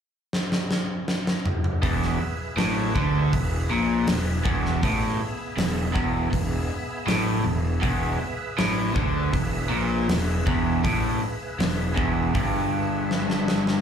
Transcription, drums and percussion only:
0.33 snare
0.52 snare
0.71 snare
1.08 snare
1.27 snare
1.46 mid tom
1.64 mid tom
1.83 kick, open hi-hat
2.02 snare
2.58 snare, open hi-hat
2.96 kick
3.33 kick, open hi-hat
4.07 snare, open hi-hat
4.46 kick
4.65 snare
4.83 kick, open hi-hat
5.58 snare, open hi-hat
5.96 kick
6.33 kick, open hi-hat
7.08 snare, open hi-hat
7.83 kick, open hi-hat
8.58 snare, open hi-hat
8.96 kick
9.33 kick, open hi-hat
10.09 snare, open hi-hat
10.47 kick
10.85 kick, open hi-hat
11.60 snare, open hi-hat
11.97 kick
12.35 kick, open hi-hat
13.11 snare
13.30 snare
13.48 snare
13.67 snare

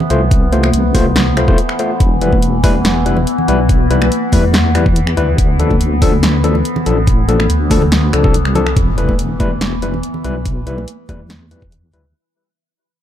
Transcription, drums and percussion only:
0.00 low conga
0.10 closed hi-hat
0.31 kick, closed hi-hat
0.52 closed hi-hat, high conga
0.63 finger snap, high conga
0.73 closed hi-hat
0.95 kick, open hi-hat, high conga
1.16 snare, closed hi-hat, high conga
1.37 finger snap, closed hi-hat
1.48 kick
1.58 closed hi-hat
1.69 finger snap
1.79 closed hi-hat
2.00 kick, closed hi-hat
2.21 closed hi-hat
2.32 kick, high conga
2.42 closed hi-hat
2.64 kick, open hi-hat, high conga
2.85 snare, closed hi-hat, high conga
3.06 closed hi-hat
3.17 low conga
3.27 closed hi-hat
3.38 low conga
3.48 closed hi-hat
3.69 kick, closed hi-hat
3.91 closed hi-hat
4.01 finger snap, high conga
4.12 closed hi-hat
4.32 kick, open hi-hat, high conga
4.53 snare, closed hi-hat, high conga
4.75 finger snap, closed hi-hat
4.86 kick
4.96 closed hi-hat
5.07 finger snap
5.17 closed hi-hat
5.38 kick, closed hi-hat
5.60 closed hi-hat
5.71 kick, high conga
5.81 closed hi-hat
6.02 kick, open hi-hat, high conga
6.23 snare, closed hi-hat, high conga
6.44 closed hi-hat
6.55 low conga
6.65 closed hi-hat
6.76 low conga
6.86 closed hi-hat
7.07 kick, closed hi-hat
7.29 closed hi-hat, high conga
7.40 finger snap, high conga
7.50 closed hi-hat
7.70 kick, open hi-hat, high conga
7.82 low conga
7.92 snare, closed hi-hat, high conga
8.13 finger snap, closed hi-hat
8.24 kick
8.34 closed hi-hat
8.45 finger snap
8.55 closed hi-hat, low conga
8.67 finger snap
8.77 kick, closed hi-hat
8.98 closed hi-hat
9.09 kick, high conga
9.19 closed hi-hat
9.40 kick, closed hi-hat, high conga
9.61 snare, closed hi-hat, high conga
9.82 closed hi-hat
9.94 low conga
10.03 closed hi-hat
10.14 low conga
10.24 closed hi-hat
10.46 kick, closed hi-hat
10.67 closed hi-hat
10.78 high conga
10.88 closed hi-hat
11.09 kick, closed hi-hat, high conga
11.29 snare, closed hi-hat, high conga
11.51 closed hi-hat
11.62 kick
11.72 closed hi-hat
11.93 closed hi-hat

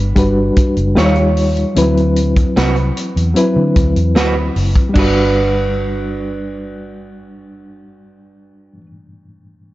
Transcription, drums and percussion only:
0.16 kick, closed hi-hat
0.56 kick, closed hi-hat
0.76 closed hi-hat
0.97 snare, closed hi-hat
1.15 closed hi-hat
1.37 open hi-hat
1.57 closed hi-hat
1.76 closed hi-hat
1.97 closed hi-hat
2.16 closed hi-hat
2.36 kick, closed hi-hat
2.57 snare, closed hi-hat
2.76 closed hi-hat
2.97 closed hi-hat
3.17 closed hi-hat
3.36 closed hi-hat
3.76 kick, closed hi-hat
3.96 closed hi-hat
4.16 snare, closed hi-hat
4.56 open hi-hat
4.75 kick, closed hi-hat
4.96 kick, crash

